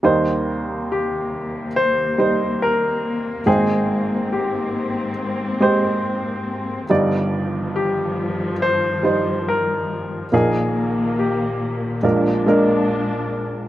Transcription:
<<
  \new Staff \with { instrumentName = "Grand piano" } { \time 4/4 \key ees \major \tempo 4 = 70 r4 g'4 c''4 bes'4 | aes'4 g'2 r4 | r4 g'4 c''4 bes'4 | aes'4 g'2 r4 | }
  \new Staff \with { instrumentName = "Upright piano" } { \time 4/4 \key ees \major <g ees' c''>2 r8 <g ees' c''>4. | <aes c'' g''>2 r8 <aes g' c''>4. | <g ees' d''>2 r8 <g ees' c''>4. | <bes ees' bes'>2 <aes d' bes'>8 <aes d' bes'>4. | }
  \new Staff \with { instrumentName = "Upright piano" } { \clef bass \time 4/4 \key ees \major <ees, ees>1 | <aes,, aes,>1 | <g,, g,>1 | <bes,, bes,>2 <bes,, bes,>2 | }
  \new Staff \with { instrumentName = "String section" } { \clef bass \time 4/4 \key ees \major << { <c bes>1 | c'1 | <ees f>1 | <ees bes>2 <aes d'>2 | } \\ { ees,1 | aes,1 | g,1 | bes,1 | } >> }
>>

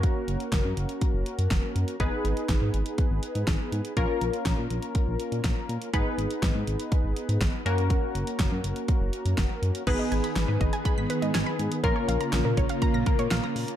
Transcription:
<<
  \new Staff \with { instrumentName = "Synth arpeggio sound" } { \time 4/4 \key gis \dorian \tempo 4 = 122 r1 | r1 | r1 | r1 |
r1 | b'16 dis''16 gis''16 b''16 r16 b'16 dis''16 gis''16 b''16 b'''16 b'16 dis''16 gis''16 b''16 r8 | ais'16 cis''16 eis''16 ais''16 r16 ais'16 cis''16 eis''16 ais''16 ais'''16 ais'16 cis''16 eis''16 ais''16 r8 | }
  \new Staff \with { instrumentName = "Analog polysynth" } { \time 4/4 \key gis \dorian <ais cis' fis' ais'>1 | <b dis' gis' b'>1 | <ais cis' eis' ais'>1 | <b dis' gis' b'>2.~ <b dis' gis' b'>8 <ais cis' fis' ais'>8~ |
<ais cis' fis' ais'>1 | <b dis' gis' b'>1 | <ais cis' eis' ais'>1 | }
  \new Staff \with { instrumentName = "String machine" } { \time 4/4 \key gis \dorian r1 | r1 | r1 | r1 |
r1 | <dis b gis'>1 | <cis ais eis'>1 | }
  \new Staff \with { instrumentName = "Analog synth bass" } { \clef bass \time 4/4 \key gis \dorian r8 fis,,16 r16 fis,,16 fis,16 fis,,16 r8 fis,,16 r16 fis,16 fis,,16 r16 fis,16 r16 | gis,,16 r16 gis,,16 r16 gis,,16 gis,16 gis,,16 r8 gis,,16 r16 gis,16 gis,,16 r16 gis,16 r16 | ais,,16 r16 ais,,16 r16 ais,,16 ais,16 ais,,16 r8 ais,,16 r16 ais,16 ais,,16 r16 ais,16 r16 | gis,,16 r16 gis,,16 r16 gis,,16 gis,16 gis,,16 r8 gis,,16 r16 gis,16 gis,,16 r16 fis,8~ |
fis,16 r16 fis,,16 r16 fis,,16 fis,16 fis,,16 r8 fis,,16 r16 fis,16 fis,,16 r16 fis,16 r16 | gis,,16 r16 gis,,16 r16 gis,,16 gis,16 gis,,16 r8 gis,,16 r16 gis,16 gis,,16 r16 gis,16 r16 | ais,,16 r16 ais,,16 r16 ais,,16 ais,16 ais,,16 r8 ais,,16 r16 ais,16 ais,,16 r16 ais,16 r16 | }
  \new DrumStaff \with { instrumentName = "Drums" } \drummode { \time 4/4 <hh bd>8 hh16 hh16 <hh bd sn>8 hh16 hh16 <hh bd>8 hh16 hh16 <hh bd sn>8 hh16 hh16 | <hh bd>8 hh16 hh16 <hh bd sn>8 hh16 hh16 <hh bd>8 hh16 hh16 <hh bd sn>8 hh16 hh16 | <hh bd>8 hh16 hh16 <hh bd sn>8 hh16 hh16 <hh bd>8 hh16 hh16 <hh bd sn>8 hh16 hh16 | <hh bd>8 hh16 hh16 <hh bd sn>8 hh16 hh16 <hh bd>8 hh16 hh16 <hh bd sn>8 hh16 hh16 |
<hh bd>8 hh16 hh16 <hh bd sn>8 hh16 hh16 <hh bd>8 hh16 hh16 <hh bd sn>8 hh16 hh16 | <cymc hh bd>8 hh16 hh16 <hh sn>8 <hh bd>16 hh16 <hh bd>8 hh16 hh16 <hh sn>8 hh16 hh16 | <hh bd>8 hh16 hh16 <hh sn>8 <hh bd>16 hh16 <hh bd>8 <hh bd>16 hh16 <hh sn>8 hho16 hh16 | }
>>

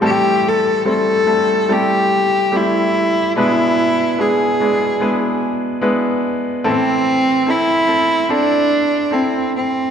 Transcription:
<<
  \new Staff \with { instrumentName = "Cello" } { \time 4/4 \key a \minor \tempo 4 = 73 g'8 a'8 a'4 g'4 e'4 | e'4 gis'4. r4. | c'4 e'4 d'4 c'8 c'8 | }
  \new Staff \with { instrumentName = "Grand piano" } { \time 4/4 \key a \minor <g a c' e' a'>4 <g a c' e' c''>8 <g a c' e' a'>8 <g a c' e' a'>4 <g a c' e' g'>4 | <gis b d' e' b'>4 <gis b d' e' gis'>8 <gis b d' e' d''>8 <gis b d' e' b'>4 <gis b d' e' b'>4 | <c' e' a'>4 <c' e' a'>8 <c' e' a'>8 <c' e' a'>4 <c' e' a'>4 | }
  \new Staff \with { instrumentName = "Grand piano" } { \clef bass \time 4/4 \key a \minor <a, e>1 | b,1 | <a, e>1 | }
>>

